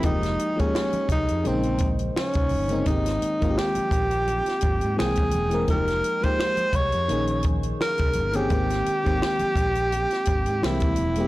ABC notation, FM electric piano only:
X:1
M:4/4
L:1/16
Q:"Swing 16ths" 1/4=85
K:Ab
V:1 name="FM electric piano"
[F,A,B,EG]3 [F,A,B,EA]4- [F,A,B,EA] [D,A,B,Ec]6 z [D,A,B,CE] | [E,A,B,CG]3 [E,A,B,CFG]6- [E,A,B,CFG] z2 [=E,A,B,Cg]3 [E,A,B,CB] | [F,A,B,EG]3 [F,A,B,EG]4- [F,A,B,EG] [E,B,DEA]6 z [E,B,CDA] | [E,A,B,CG]3 [E,A,B,CG]6- [E,A,B,CG] z2 [=E,A,B,CG]3 [E,A,B,CG] |]